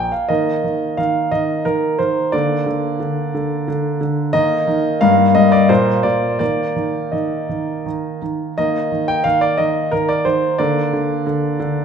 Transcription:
Already playing: G5
0.12 F5
0.29 D#3 A#3 A#4 D#5
0.64 D#3
0.97 D#3 F5
1.31 D#3 D#5
1.65 D#3 A#4
1.99 D#3 C5
2.32 D3 A#3 A#4 D5
2.66 D3
3.00 D3
3.34 D3
3.68 D3
4.01 D3
4.33 D#3 A#3 A#4 D#5
4.67 D#3
5.01 G2 A#3 A#4 F5
5.35 G2 D#5
5.52 D5
5.69 A#2 A#3 A#4 C5
6.03 A#2 D5
6.39 D#3 A#3 A#4 D5
6.76 D#3
7.12 D#3 D#5
7.49 D#3
7.86 D#3
8.22 D#3
8.58 D#3 A#3 A#4 D#5
8.92 D#3
9.08 G5
9.24 D#3 F5
9.41 D5
9.58 D#3 D#5
9.91 D#3 A#4
10.09 D5
10.25 D#3 C5
10.58 D3 A#3 A#4 D5
10.93 D3
11.27 D3
11.60 D3

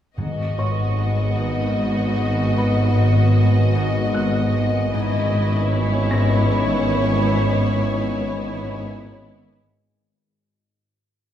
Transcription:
0.17 G#1 G#2 F#3 B3 F#4 D#5
0.58 G#2 C#5 C#6
0.98 G#3
1.38 G#2
1.78 G#2
2.17 G#3
2.57 G#2 B4 B5
2.97 G#2
3.37 G#3
3.75 G#2
4.14 G#2 F#6
4.55 G#3
4.93 G#1 G#2 E3 B3 C#4 E4 G#5 C#6
5.34 G#2
5.73 G#3 C#5
6.11 G#2 A#6
6.53 G#2
6.94 G#3
7.36 G#2
7.77 G#2
8.19 G#3
8.61 G#2
9.03 G#2
9.44 G#3

